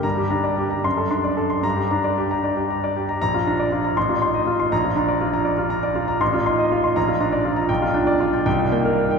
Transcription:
\new Staff \with { instrumentName = "Grand piano" } { \time 6/8 \key g \minor \tempo 4. = 79 << { <g, bes''>8 d'4 <fis, c'''>8 d'4 | <g, bes''>8 d'4 r4. | <bes,, bes''>8 d'4 <a,, c'''>8 ees'4 | <bes,, bes''>8 d'4 r4. |
<a,, c'''>8 ees'4 <bes,, bes''>8 d'4 | <b,, g''>8 d'4 <c, g''>8 bes8 ees'8 | } \\ { r16 g'16 bes''16 d''16 g'16 bes''16 r16 a'16 c'''16 d''16 a'16 c'''16 | r16 g'16 bes''16 d''16 g'16 bes''16 d''16 g'16 bes''16 d''16 g'16 bes''16 | r16 f'16 bes''16 d''16 f'16 bes''16 r16 f'16 c'''16 ees''16 f'16 c'''16 | r16 f'16 bes''16 d''16 f'16 bes''16 d''16 f'16 bes''16 d''16 f'16 bes''16 |
r16 f'16 c'''16 ees''16 f'16 c'''16 r16 f'16 bes''16 d''16 f'16 bes''16 | r16 f'16 g''16 d''16 f'16 g''16 r16 ees'16 g''16 bes'8 g''16 | } >> }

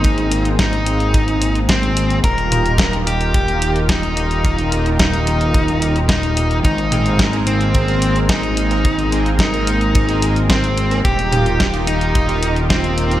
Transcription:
<<
  \new Staff \with { instrumentName = "Analog polysynth" } { \time 4/4 \key aes \major \tempo 4 = 109 r1 | r1 | r1 | r8 <c' aes' bes'>8. <c' aes' bes'>4 <c' aes' bes'>8. <c' aes' bes'>16 r8 <c' aes' bes'>16 |
r8 <c' aes' bes'>8. <c' aes' bes'>4 <c' aes' bes'>8. <c' aes' bes'>16 r8 <c' aes' bes'>16 | r8 <ees' f' g'>8. <ees' f' g'>4 <ees' f' g'>8. <ees' f' g'>16 r8 <ees' f' g'>16 | }
  \new Staff \with { instrumentName = "Lead electric guitar" } { \time 4/4 \key aes \major ees'4 ees'2 c'4 | bes'4. g'4. ees'4~ | ees'4 ees'2 ees'4 | ees'4. c'4. ees'4~ |
ees'4 ees'2 c'4 | g'4. ees'4. c'4 | }
  \new Staff \with { instrumentName = "Analog synth pad" } { \time 4/4 \key aes \major <aes bes c'>1 | <ees ees' f' g' bes'>1~ | <ees ees' f' g' bes'>1 | <aes bes c'>1~ |
<aes bes c'>1 | <ees ees' f' g' bes'>1 | }
  \new Staff \with { instrumentName = "Analog synth bass" } { \clef bass \time 4/4 \key aes \major aes,,1 | ees,,1~ | ees,,1 | aes,,1~ |
aes,,1 | ees,,1 | }
  \new DrumStaff \with { instrumentName = "Drums" } \drummode { \time 4/4 <hh bd>16 hh16 hh16 hh16 <hh bd sn>16 hh16 hh16 hh16 <hh bd>16 hh16 hh16 hh16 <hh bd sn>16 hh16 hh16 hh16 | <hh bd>16 hh16 <hh toml>16 hh16 <hh bd sn>16 hh16 hh16 hh16 <hh bd>16 hh16 hh16 hh16 <hh bd sn>16 hh16 hh16 hh16 | <hh bd>16 hh16 hh16 hh16 <hh bd sn>16 hh16 hh16 hh16 <hh bd>16 hh16 hh16 hh16 <hh bd sn>16 hh16 hh16 hh16 | <hh bd>16 hh16 <hh toml>16 hh16 <hh bd sn>16 hh16 hh16 hh16 <hh bd>16 hh16 hh16 hh16 <hh bd sn>16 hh16 hh16 hh16 |
<hh bd>16 hh16 hh16 hh16 <hh bd sn>16 hh16 hh16 hh16 <hh bd>16 hh16 hh16 hh16 <hh bd sn>16 hh16 hh16 hh16 | <hh bd>16 hh16 <hh toml>16 hh16 <hh bd sn>16 hh16 hh16 hh16 <hh bd>16 hh16 hh16 hh16 <hh bd sn>16 hh16 hh16 hh16 | }
>>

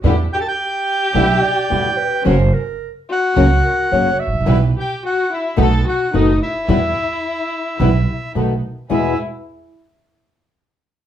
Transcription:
<<
  \new Staff \with { instrumentName = "Bandoneon" } { \time 4/4 \key e \minor \tempo 4 = 108 r8 g''32 a''32 g''2.~ g''16 | r4. fis''2 r8 | r8 g''8 fis''8 e''8 a''8 fis''8 dis''8 e''8~ | e''2. r4 |
e''8 r2. r8 | }
  \new Staff \with { instrumentName = "Clarinet" } { \time 4/4 \key e \minor r2 e''8 d''4 b'8 | c''8 ais'8. r4 r16 ais'8 cis''8 e''8~ | e''16 r2. r8. | r1 |
gis''8 r2. r8 | }
  \new Staff \with { instrumentName = "String section" } { \time 4/4 \key e \minor <d' e' g'>8 r4. <d' e' g'>8 r8 <d' e' g'>8 r8 | <cis' fis' ais'>8 r4. <cis' fis' ais'>8 r8 <cis' fis' ais'>8 r8 | <e' g' b'>8 r4. <dis' a' b'>8 r8 <dis' a' b'>8 r8 | <e' g' b'>8 r4. <e' g' b'>8 r8 <dis' a' b'>8 r8 |
<e' gis' b'>8 r2. r8 | }
  \new Staff \with { instrumentName = "Violin" } { \time 4/4 \key e \minor r8 g'32 a'32 g'2.~ g'16 | r4. fis'2 r8 | r8 g'8 fis'8 e'8 a'8 fis'8 dis'8 e'8~ | e'2. r4 |
e'8 r2. r8 | }
  \new Staff \with { instrumentName = "Nylon-string guitar" } { \clef bass \time 4/4 \key e \minor <b, d g b e'>8 r4. <b, d g b e'>8 r8 <b, d g b e'>8 r8 | <cis fis ais cis' fis'>8 r4. <cis fis ais cis' fis'>8 r8 <cis fis ais cis' fis'>8 r8 | <b, e g b e'>8 r4. <b, dis a b fis'>8 r8 <b, dis a b fis'>8 r8 | <b, e g b e'>8 r4. <b, e g b e'>8 r8 <b, dis a b fis'>8 r8 |
<e, b, e gis b e'>8 r2. r8 | }
  \new Staff \with { instrumentName = "Upright bass" } { \clef bass \time 4/4 \key e \minor e,16. r4. r32 b,,16. r8 r32 e,16. r8 r32 | fis,,16. r4. r32 cis,16. r8 r32 fis,,16. r16 gis,,32 a,,32 ais,,32 | b,,16. r4. r32 b,,16. r8 r32 fis,,16. r8 r32 | e,16. r4. r32 b,,16. r8 r32 b,,16. r8 r32 |
e,8 r2. r8 | }
>>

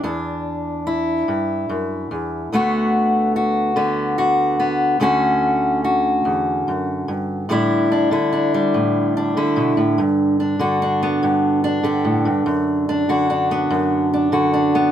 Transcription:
\new Staff \with { instrumentName = "Steel-string acoustic guitar" } { \time 6/8 \key d \major \tempo 4. = 48 << { d'4 e'2 | <d a b fis'>4 fis'8 b8 fis'8 b8 | <d a cis' fis'>4 fis'2 | <d g d' e'>8 d'16 e'16 d'16 g8. d'16 e'8. |
r8 d'16 fis'16 d'16 b8. d'16 g'8. | r8 d'16 fis'16 d'16 b8. d'16 fis'16 d'16 b16 | } \\ { e,4. g,8 fis,8 e,8 | d,4. d4. | d,4. e,8 fis,8 g,8 | a,8. d8. a,8. d16 b,16 a,16 |
g,8. d8. g,8. d16 a,16 g,16 | fis,8. d8. fis,8. d8. | } >> }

